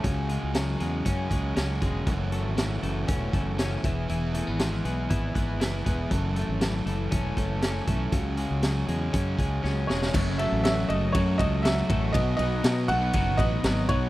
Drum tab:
CC |----------------|----------------|----------------|----------------|
RD |----------------|----------------|----------------|----------------|
HH |x-x-x-x-x-x-x-x-|x-x-x-x-x-x-x-x-|x-x-x-x-x-x-x-x-|x-x-x-x-x-x-x-x-|
SD |----o-------o---|----o-------o---|----o-------o---|----o-------o---|
BD |o-------o-o---o-|o-------o-o---o-|--------o-o---o-|o-------o-o---o-|

CC |----------------|x---------------|----------------|
RD |----------------|--x-x-x-x-x-x-x-|x-x-x-x-x-x-x-x-|
HH |x-x-x-x-x-x-----|----------------|----------------|
SD |----o-------o-oo|----o-------o---|----o-------o---|
BD |o-------o-o-----|o-------o-o---o-|o-------o-o---o-|